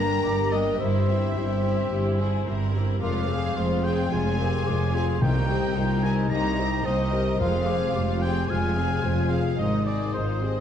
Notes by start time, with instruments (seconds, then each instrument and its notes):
Already playing: double bass section G1, cello section G2, harp G2 D3 D4 G4 A#4, viola section A#3 D4, clarinet A#4, french horn section A#4, flute A#5, violin section A#5, oboe A#5
0.00 violin section A#4 G5
0.23 double bass section G1, cello section G2, viola section G3 G4, violin section G4 D5, harp A#4, flute D6
0.51 viola section A#3 D4, harp G4, violin section A#4 D#5 G5, oboe D#5, flute D6
0.78 double bass section G1, cello section G2, harp G2, viola section E4 G4, violin section E4 C5 E5, french horn section C5, clarinet C5, oboe E5, flute C6
1.07 harp C4, viola section C4 E4, violin section G4 E5
1.33 double bass section G1, cello section G2, viola section E4, violin section G4, harp C5
1.37 viola section G4
1.63 viola section C4 E4, harp G4
1.90 double bass section G1, cello section G2, harp G3, viola section E4 G4
2.17 harp C4, viola section C4 E4, violin section G#4
2.45 double bass section G1, cello section G2, viola section E4 G4, violin section A#4, harp C5
2.73 viola section C4 E4, harp G4
3.01 double bass section F1, cello section F2, harp F2, viola section G#3 F4, violin section F4 C5 F5, clarinet A#4, french horn section A#4, oboe F5, flute D6
3.28 harp C4, viola section C4 G#4, french horn section G#4, clarinet G#4, violin section G#4 F5
3.55 double bass section F1, cello section F2, viola section G#3 F4, violin section F4 C5, clarinet G#4, french horn section C5, harp C5, flute C6
3.84 viola section C4 G#4, harp G#4, violin section G#4 F5 G5, oboe G5
4.11 double bass section F1, cello section F2, harp C3, viola section G#3 F4, clarinet F4, violin section F4 C5 G#5, french horn section G#4, oboe G#5, flute C6
4.38 harp C4, viola section C4 G#4, clarinet G4, violin section G#4 F5, french horn section A#4
4.65 double bass section F1, cello section F2, viola section G#3 F4, violin section F4 C5, french horn section G#4, clarinet G#4, harp C5, flute D6
4.93 viola section C4 G#4, french horn section F4, harp G#4, violin section G#4 F5 G#5, oboe G#5, flute C6
5.20 double bass section C2, cello section C2, harp C3, timpani C3, viola section A#3 D#4, french horn section D#4, violin section G4 C5 G5, clarinet A#4, oboe G5, flute A#5
5.48 viola section C4 G4, harp D#4, french horn section G4, violin section A#4 D#5, clarinet C5
5.74 double bass section C2, cello section C2, viola section A#3 D#4, french horn section F4, violin section G4 C5, clarinet A#4, harp C5, flute A#5
6.02 viola section C4 G4, french horn section D#4, harp A#4, violin section A#4 D#5 G#5, oboe G#5
6.30 double bass section C2, cello section C2, harp G3, viola section A#3 D#4, violin section G4 C5 A#5, clarinet G4, oboe A#5
6.57 viola section C4 G4, harp D#4, violin section A#4 D#5
6.84 double bass section C2, cello section C2, viola section A#3 D#4, violin section G4 C5 D#5, clarinet C5, french horn section C5, harp C5, oboe D#5
7.12 viola section C4 G4, violin section A#4 D#5, clarinet A#4, harp A#4
7.38 double bass section F1, cello section F2, timpani F2, harp F2, viola section G#3 F4, violin section F4 C5 F5, oboe F5, flute C6
7.43 clarinet G#4
7.66 viola section C4 G#4, harp C4, violin section G#4 F5, flute D6
7.92 double bass section F1, cello section F2, viola section G#3 F4, violin section F4 C5, clarinet G4, harp C5, flute D6
8.21 viola section C4 G#4, violin section G#4 F5 G5, harp G#4, oboe G5, flute C6
8.48 double bass section F1, cello section F2, harp C3, viola section G#3 F4, violin section F4 C5 G#5, clarinet F4, french horn section G#4, oboe G#5, flute F6
8.76 viola section C4 G#4, harp C4, french horn section G4, clarinet G#4, violin section G#4 F5
9.03 double bass section F1, cello section F2, viola section G#3 F4, violin section F4 C5, french horn section F4, harp C5, clarinet C5
9.29 viola section C4 G#4, violin section G#4 F5, harp G#4, oboe F5
9.58 double bass section G#1, cello section G#2, harp G#2, viola section G#3 D#4, french horn section D#4, clarinet A#4, violin section C5 D#5, oboe D#5, flute D#6
9.85 viola section C4, harp C4, violin section G#4 D5 D#5, oboe D5
10.12 double bass section G#1, cello section G#2, viola section G#3 D#4, violin section C5, oboe C5, harp C5
10.17 french horn section F4
10.40 viola section C4, french horn section G4, harp G#4, violin section G#4 D#5